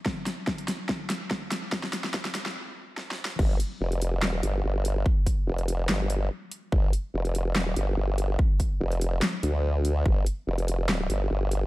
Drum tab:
CC |------------------------------------------------|------------------------------------------------|x-----------------------------------------------|------------------------------------------------|
HH |------x--------x--x-----------x-----------x-----|------x--------x--x-----------------------------|------x--------x--x-----------x-----------x-----|------x--------x--x-----------x-----------x-----|
CP |------------------------------------------------|------------------------------------------------|------------------------x-----------------------|------------------------x-----------------------|
SD |o-----o-----o-----o-----o-----o-----o-----o-----|o--o--o--o--o--o--o--o--------------o---o---o---|------------------------o-----------------------|------------------------o-----------------------|
BD |o-----------o-----------o-----------o-----------|o-----------o-----------------------------------|o-----------------------------------------------|o-----o-----------------------------------------|

CC |------------------------------------------------|------------------------------------------------|------------------------------------------------|
HH |------x--------x--x-----------x-----------x-----|------x--------x--x-----------x-----------x-----|------x--------x--x-----------x-----------x-----|
CP |------------------------x-----------------------|------------------------x-----------------------|------------------------x-----------------------|
SD |------------------------o-----------------------|------------------------o-----------------------|------------------------o-----------------------|
BD |o-----------------------------------------------|o-----o-----------------------------------------|o-----------------------------------------------|